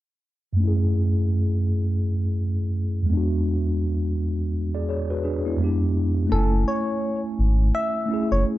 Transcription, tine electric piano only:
0.53 3.02 F#2 medium
0.53 3.04 A3 medium
0.60 3.06 C#4 medium
0.60 3.08 E4 medium
0.68 3.09 G#4 medium
3.02 5.52 E2 medium
3.02 5.54 G#3 medium
3.10 4.50 B3 medium
3.10 4.51 D4 medium
3.17 4.53 F#4 medium
4.74 4.88 G#4 medium
4.74 4.88 D5 medium
4.89 5.09 G#4 medium
4.89 5.09 C#5 medium
5.10 5.23 F#4 medium
5.10 5.23 B4 medium
5.24 5.45 D4 medium
5.24 5.44 G#4 medium
5.46 5.59 B3 soft
5.46 5.79 E4 medium
5.56 6.29 F2 medium
5.56 6.30 G#3 medium
5.56 6.31 B3 medium
5.62 6.32 D4 medium
5.62 6.33 G4 medium
6.27 7.57 A3 medium
6.27 7.59 C#4 medium
6.32 7.60 E4 medium
6.32 7.61 G#5 medium
8.06 8.58 A3 medium
8.06 8.58 C#4 medium
8.11 8.58 E4 medium
8.11 8.58 G#4 medium

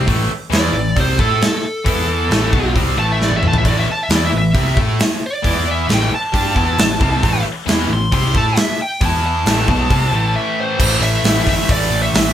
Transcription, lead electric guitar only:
0.56 0.97 D5 loud
1.00 1.19 C5 medium
1.20 1.41 A4 medium
1.42 2.72 A4 loud
2.99 3.09 A5 loud
3.12 3.22 E5 medium
3.24 3.36 D5 medium
3.36 3.45 E5 medium
3.48 3.56 A5 medium
3.58 3.66 E5 loud
3.66 3.77 D5 loud
3.80 3.89 E5 medium
3.92 4.00 A5 loud
4.03 4.12 E5 medium
4.16 4.24 D5 medium
4.26 4.34 E5 medium
4.38 4.78 E5 medium
5.26 5.67 D5 medium
5.71 5.90 E5 loud
5.94 6.13 G5 medium
6.15 7.43 A5 loud
7.93 8.13 C6 loud
8.14 8.35 C6 loud
8.37 8.58 A5 loud
8.58 8.79 E5 medium
8.82 9.02 G5 loud
9.05 9.25 A5 loud
9.26 10.55 A5 loud
10.36 10.59 E5 medium
10.60 11.03 C5 medium
11.03 11.48 E5 loud
11.49 11.71 E5 loud
11.72 12.01 D5 medium
12.02 12.33 E5 medium

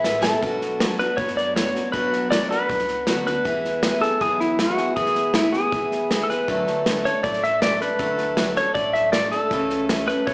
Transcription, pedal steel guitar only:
0.00 0.21 E5 loud
0.23 0.95 A4 medium
0.99 1.17 B4 medium
1.17 1.37 C#5 medium
1.37 1.55 D5 medium
1.56 1.91 C#5 medium
1.92 2.28 B4 medium
2.31 2.49 D5 medium
2.51 3.26 B4 medium
3.27 3.98 B4 medium
4.01 4.21 A4 medium
4.21 4.39 G#4 medium
4.40 4.60 E4 medium
4.60 4.96 F#4 medium
4.96 5.35 G#4 medium
5.35 5.54 E4 medium
5.52 6.24 G#4 medium
6.24 6.30 A4 soft
6.30 7.07 B4 medium
7.05 7.23 C#5 medium
7.23 7.43 D5 medium
7.44 7.62 E5 medium
7.62 7.80 D5 medium
7.82 8.57 B4 medium
8.57 8.74 C#5 medium
8.74 8.94 D5 medium
8.93 9.12 E5 medium
9.12 9.32 D5 medium
9.31 9.85 A4 medium
10.08 10.27 B4 medium
10.27 10.34 C#5 medium

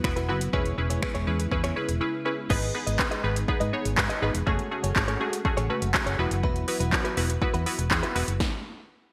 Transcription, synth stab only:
0.04 0.20 B3 medium
0.04 0.20 E4 medium
0.04 0.20 F#4 medium
0.04 0.20 B4 loud
0.28 0.44 B3 medium
0.28 0.44 E4 medium
0.28 0.45 F#4 medium
0.28 0.45 B4 medium
0.53 0.69 C#4 loud
0.53 0.69 E4 loud
0.53 0.69 G#4 loud
0.53 0.69 B4 loud
0.78 0.94 C#4 medium
0.78 0.94 E4 medium
0.78 0.94 G#4 medium
0.78 0.94 B4 medium
1.02 1.18 C#4 medium
1.02 1.18 E4 medium
1.02 1.18 G#4 medium
1.02 1.18 B4 medium
1.27 1.43 C#4 medium
1.27 1.43 E4 medium
1.27 1.43 G#4 medium
1.27 1.43 B4 medium
1.52 1.67 C#4 loud
1.52 1.67 E4 loud
1.52 1.68 G#4 medium
1.52 1.68 B4 loud
1.76 1.92 C#4 medium
1.76 1.92 E4 medium
1.76 1.92 G#4 medium
1.76 1.92 B4 loud
2.01 2.17 C#4 medium
2.01 2.17 E4 medium
2.01 2.17 G#4 medium
2.01 2.17 B4 medium
2.25 2.41 C#4 medium
2.25 2.41 E4 medium
2.25 2.41 G#4 medium
2.25 2.41 B4 loud
2.50 2.66 B3 loud
2.50 2.66 D#4 medium
2.50 2.66 G#4 loud
2.50 2.66 B4 loud
2.75 2.90 B3 medium
2.75 2.90 D#4 medium
2.75 2.91 G#4 medium
2.75 2.91 B4 medium
2.99 3.15 B3 medium
2.99 3.15 D#4 medium
2.99 3.15 G#4 medium
2.99 3.15 B4 medium
3.24 3.40 B3 medium
3.24 3.40 D#4 medium
3.24 3.40 G#4 medium
3.24 3.40 B4 loud
3.48 3.64 B3 loud
3.48 3.64 D#4 loud
3.48 3.64 G#4 loud
3.48 3.64 B4 loud
3.73 3.89 B3 medium
3.73 3.89 D#4 medium
3.73 3.89 G#4 medium
3.73 3.89 C#5 loud
3.97 4.13 B3 medium
3.97 4.13 D#4 medium
3.97 4.13 G#4 medium
3.97 4.14 B4 medium
4.22 4.38 B3 medium
4.22 4.38 D#4 medium
4.22 4.38 G#4 medium
4.22 4.38 B4 loud
4.46 4.62 A3 loud
4.46 4.63 C#4 loud
4.46 4.63 F#4 loud
4.46 4.63 G#4 loud
4.71 4.87 A3 medium
4.71 4.87 C#4 medium
4.71 4.87 F#4 medium
4.71 4.87 G#4 medium
4.96 5.12 A3 medium
4.96 5.12 C#4 medium
4.96 5.12 F#4 medium
4.96 5.12 G#4 medium
5.20 5.36 A3 medium
5.20 5.36 C#4 medium
5.20 5.36 F#4 medium
5.20 5.36 G#4 loud
5.45 5.61 A3 loud
5.45 5.61 C#4 loud
5.45 5.61 F#4 loud
5.45 5.61 G#4 loud
5.70 5.85 A3 medium
5.70 5.86 C#4 medium
5.70 5.86 F#4 medium
5.70 5.86 B4 loud
5.94 6.10 A3 medium
5.94 6.10 C#4 medium
5.94 6.10 F#4 medium
5.94 6.10 G#4 loud
6.19 6.58 B3 loud
6.19 6.58 E4 medium
6.19 6.58 F#4 medium
6.19 6.58 B4 loud
6.68 6.84 B3 medium
6.68 6.84 E4 medium
6.68 6.84 F#4 medium
6.68 6.84 B4 medium
6.92 7.08 B3 medium
6.92 7.08 E4 medium
6.92 7.08 F#4 medium
6.92 7.09 B4 medium
7.17 7.33 B3 medium
7.17 7.33 E4 medium
7.17 7.33 F#4 medium
7.17 7.33 B4 medium
7.42 7.58 B3 loud
7.42 7.58 E4 medium
7.42 7.58 F#4 medium
7.42 7.58 B4 loud
7.66 7.82 B3 medium
7.66 7.82 E4 medium
7.66 7.82 F#4 medium
7.66 7.82 B4 loud
7.91 8.07 B3 medium
7.91 8.07 E4 medium
7.91 8.07 F#4 medium
7.91 8.07 G#4 loud
8.15 8.31 B3 medium
8.15 8.31 E4 medium
8.15 8.31 F#4 medium
8.15 8.32 B4 loud

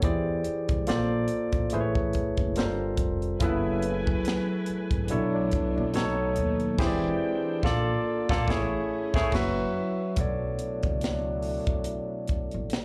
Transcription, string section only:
3.40 5.08 F#3 medium
3.40 5.08 A3 medium
3.40 5.08 E4 medium
3.40 5.08 B4 medium
3.40 5.08 G#5 medium
5.09 5.93 A3 medium
5.09 6.77 B3 medium
5.09 5.93 D4 medium
5.94 6.78 A3 medium
5.94 6.78 D#4 medium
6.78 7.62 E3 medium
6.78 7.62 G#3 medium
6.78 7.62 C4 medium
6.78 8.46 D4 medium
6.78 7.62 G5 medium
7.63 8.47 A#3 medium
7.63 8.47 A4 medium
8.47 9.31 A3 medium
8.47 10.15 C#4 medium
8.47 9.31 G#4 medium
9.32 10.16 F#3 medium
9.32 10.16 E4 medium
9.32 10.16 B4 medium

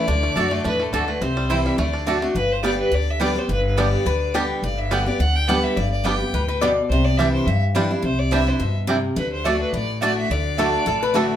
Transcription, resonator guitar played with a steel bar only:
4.06 4.35 B4 medium
4.35 4.55 G4 medium
6.34 6.47 B4 medium
6.48 6.62 B4 medium
6.61 6.82 D5 loud
10.59 10.85 A4 medium
10.87 11.03 A4 medium
11.03 11.16 B4 loud
11.16 11.36 A4 medium

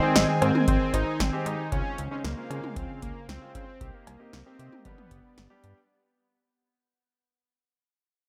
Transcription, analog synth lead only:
0.00 0.38 C4 loud
0.41 0.66 C4 loud
0.68 0.95 C4 loud
0.94 1.21 D#4 loud
1.20 1.48 C4 loud
1.46 1.71 D#4 loud
1.72 2.08 C#4 loud
2.11 2.23 C#4 loud
2.24 2.78 A#3 loud
2.76 3.02 C4 loud
3.02 3.27 A#3 medium
3.29 3.53 C4 loud
3.55 3.95 C4 loud
3.94 4.33 A#3 medium
4.33 4.39 A#3 medium
4.46 4.83 C4 loud
4.85 5.60 B3 medium

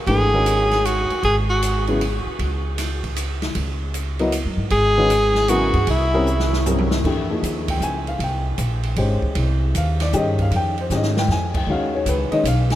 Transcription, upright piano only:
0.08 0.30 E3 medium
0.08 0.31 A3 soft
0.08 0.31 D4 medium
0.08 0.31 G4 medium
0.08 0.31 B4 medium
0.33 1.16 D#3 medium
0.33 1.16 G#3 medium
0.33 1.16 C#4 medium
0.33 1.16 F#4 medium
0.33 1.17 A#4 medium
1.88 2.00 C#3 medium
1.88 2.00 F#3 soft
1.88 2.00 B3 medium
1.88 2.00 E4 medium
1.88 2.00 G#4 medium
4.20 4.32 F#3 medium
4.20 4.32 B3 medium
4.20 4.32 E4 medium
4.20 4.32 A#4 medium
4.20 4.32 D#5 medium
4.97 5.10 D#3 medium
4.97 5.10 G#3 medium
4.97 5.10 C#4 medium
4.97 5.10 F#4 medium
4.97 5.10 B4 medium
5.49 5.72 C#3 medium
5.49 5.72 F#3 medium
5.49 5.73 B3 medium
5.49 5.73 E4 medium
5.49 5.73 A#4 medium
6.14 6.26 G3 medium
6.14 6.26 C4 medium
6.14 6.26 C#4 medium
6.14 6.27 E4 medium
6.14 6.26 A#4 medium
6.67 6.89 G3 soft
6.67 6.89 C4 soft
6.67 6.89 C#4 soft
6.67 6.89 E4 soft
6.67 6.90 A#4 medium
7.05 7.27 E3 medium
7.05 7.28 A3 soft
7.05 7.28 D4 soft
7.05 7.28 G4 medium
7.31 8.13 F3 soft
7.31 8.13 A#3 soft
7.31 8.13 D#4 soft
7.31 8.13 G#4 medium
7.70 7.82 G5 medium
7.83 8.07 G#5 medium
8.08 8.21 F5 medium
8.23 9.34 G5 medium
8.97 9.56 G#3 medium
8.97 9.56 C#4 soft
8.97 9.57 G4 medium
8.97 9.57 C5 medium
9.77 10.01 F5 medium
10.02 10.14 D5 medium
10.13 10.72 D#3 medium
10.13 10.72 C#4 medium
10.13 10.72 G4 medium
10.13 10.72 G#4 medium
10.13 10.39 D#5 medium
10.42 10.53 F5 medium
10.56 10.78 G5 medium
10.81 10.92 C5 medium
10.91 11.13 D#3 medium
10.91 11.14 G#3 soft
10.91 11.14 C#4 medium
10.91 11.14 G4 medium
10.91 11.17 D#5 medium
11.19 11.30 G5 medium
11.31 11.55 G#5 medium
11.57 11.69 G5 medium
11.68 12.27 D#3 medium
11.68 12.27 G#3 soft
11.68 12.27 C#4 medium
11.68 12.27 F#4 medium
11.68 11.94 F5 medium
11.95 12.07 C#5 medium
12.09 12.32 B4 medium
12.32 12.44 D#3 medium
12.32 12.44 G#3 medium
12.32 12.44 C#4 medium
12.32 12.44 D#4 medium
12.32 12.44 D#5 medium
12.47 12.70 F5 medium
12.72 12.75 G#5 medium

